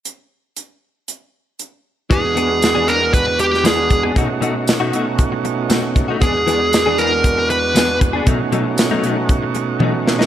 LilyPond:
<<
  \new Staff \with { instrumentName = "Lead electric guitar" } { \time 4/4 \key e \mixolydian \tempo 4 = 117 r1 | gis'4. ais'8 b'8 g'8 gis'8. r16 | r1 | gis'4. ais'4 b'4 r8 |
r1 | }
  \new Staff \with { instrumentName = "Tonewheel organ" } { \time 4/4 \key e \mixolydian r1 | <e, gis b d' fis'>1 | <b, a cis' dis' fis'>1 | <e, gis b d' fis'>1 |
<b, a cis' dis' fis'>1 | }
  \new Staff \with { instrumentName = "Clean electric guitar" } { \time 4/4 \key e \mixolydian r1 | <e b d' gis'>16 r16 <e b d' gis'>16 r8 <e b d' gis'>16 <e b d' gis'>16 r4 r16 <e b d' gis'>16 r8 <b d' gis'>16 | <b, a dis' fis'>16 r16 <b, a dis' fis'>16 r8 <b, a dis' fis'>16 <b, a dis' fis'>16 r4 r16 <b, a dis' fis'>16 r8 <a dis' fis'>16 | <e b d' gis'>16 r16 <e b d' gis'>16 r8 <e b d' gis'>16 <e b d' gis'>16 r4 r16 <e b d' gis'>16 r8 <b d' gis'>16 |
<b, fis a dis'>16 r16 <b, fis a dis'>16 r8 <b, fis a dis'>16 <b, fis a dis'>16 r4 r16 <b, fis a dis'>16 r8 <fis a dis'>16 | }
  \new DrumStaff \with { instrumentName = "Drums" } \drummode { \time 4/4 hh4 hh4 hh4 hh4 | <hh bd>8 hh8 <hh sn tamb>8 hh8 <hh bd>8 hh16 sn16 <hh sn tamb>8 <hh bd>8 | <hh bd>8 hh8 <hh sn tamb>8 hh8 <hh bd>8 hh8 <hh sn tamb>8 <hh bd>8 | <hh bd>8 hh8 <hh sn tamb>8 hh8 <hh bd>8 hh8 <hh sn tamb>8 <hh bd>8 |
<hh bd>8 hh8 <hh sn tamb>8 hh8 <hh bd>8 hh8 tommh8 sn16 sn16 | }
>>